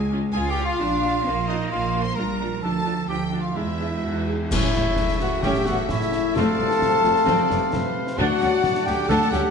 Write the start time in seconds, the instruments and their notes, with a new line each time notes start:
Already playing: double bass section C#2, cello section G#3, violin section G#5
0.12 viola section C#4 F4
0.33 double bass section C#2, viola section C#4 F4, cello section F4, cor anglais G#4, violin section G#5
0.48 cor anglais G4, violin section G5
0.58 viola section C#4 F4
0.63 cor anglais F4, violin section F5
0.80 double bass section A#1, cello section D4, viola section D4 F4
1.04 viola section D4 F4
1.26 double bass section A#1, cello section A#3, viola section D4 F4
1.48 viola section D4 F4, cor anglais D#4, violin section D#5
1.70 double bass section A#1, viola section D4 F4, cor anglais F4, violin section F5
1.95 viola section D4 F4
2.01 cor anglais C5, violin section C6
2.15 double bass section A#1, cello section G3, viola section D4 F4, cor anglais A#4, violin section A#5
2.40 viola section D4 F4
2.62 double bass section D2, cello section F3, viola section D4 F4, cor anglais A4, violin section A5
2.86 viola section D4 F4
3.09 double bass section D2, viola section D4 F4, cor anglais G4, violin section G5
3.33 viola section D4 F4
3.40 cor anglais F4, violin section F5
3.55 double bass section E2, cello section G#3, viola section D4 G#4, cor anglais E4, violin section E5
3.79 viola section D4 G#4
4.02 double bass section E2, viola section F#4
4.27 viola section G#4
4.50 double bass section A1, cello section A2, trombone section C#3 A3, viola section A3 C#4, french horn section E4, trumpet E4, cor anglais C#5, violin section C#5 E5, flute E5, clarinet E5, concert bass drum, crash
4.74 double bass section A1, cello section A2, viola section G3 B3, snare
4.96 violin section E5, concert bass drum, snare
5.08 snare
5.20 double bass section A1, cello section A2, viola section E3 A3, trumpet F#4, french horn section F#4, violin section F#5, flute F#5, snare
5.42 double bass section A1, cello section A2, viola section A3 C#4, trumpet G4, french horn section G4, violin section E5 G5, flute G5, concert bass drum, snare
5.54 snare
5.66 double bass section A1, cello section A2, viola section G3 B3, trumpet F#4, french horn section F#4, violin section F#5, flute F#5, snare
5.87 double bass section A1, viola section A3 C#4, trumpet E4, french horn section E4, cor anglais C#5, clarinet E5, violin section E5, flute E5, concert bass drum, snare
5.91 cello section A2
6.01 snare
6.12 snare
6.36 double bass section F1, cello section F2, trombone section C3, viola section A3 C4, trumpet A4, french horn section A4, cor anglais C5, violin section D5 A5, clarinet F5, flute A5, concert bass drum, snare
6.58 double bass section F1, cello section F2, viola section G3 B3
6.71 snare
6.82 violin section C5, concert bass drum, snare
7.03 double bass section F1, cello section F2, viola section F3 A3, snare
7.16 snare
7.26 double bass section F1, cello section F2, viola section A3 C4, violin section D5, concert bass drum, snare
7.50 double bass section F1, cello section F2, viola section G3 B3, snare
7.72 double bass section F1, cello section F2, viola section A3 C4, cor anglais B4, violin section C5, concert bass drum, snare
8.07 snare
8.18 cello section D2, double bass section D2, trombone section D3 A3, viola section A3 D4, french horn section F#4, trumpet F#4, violin section D5 F#5, clarinet F#5, flute F#5, cor anglais A5, concert bass drum
8.40 cello section D2, double bass section D2, viola section G3 C#4, snare
8.63 concert bass drum, snare
8.75 snare
8.86 cello section D2, double bass section D2, viola section F#3 A3, french horn section G4, trumpet G4, flute G5, violin section G5, snare
9.09 cello section D2, double bass section D2, viola section A3 D4, trumpet A4, french horn section A4, clarinet F#5, violin section F#5 A5, flute A5, cor anglais A5, concert bass drum, snare
9.22 snare
9.31 cello section D2, double bass section D2, viola section G3 C#4, trumpet G4, french horn section G4, flute G5, violin section G5, snare